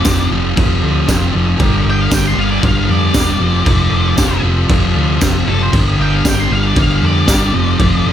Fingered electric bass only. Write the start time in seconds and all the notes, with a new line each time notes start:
0.06 F1
0.31 F1
0.58 F1
0.83 D2
1.08 F1
1.35 F1
1.60 G1
1.85 G1
2.12 G1
2.36 G1
2.63 G1
2.89 F2
3.15 E1
3.40 F1
3.66 F1
3.91 F1
4.18 F1
4.43 F1
4.70 F1
4.95 D2
5.22 F1
5.47 F#1
5.73 G1
5.99 G1
6.25 G1
6.50 G1
6.76 G1
7.02 F2
7.28 G1
7.54 F1
7.80 F1
8.06 F1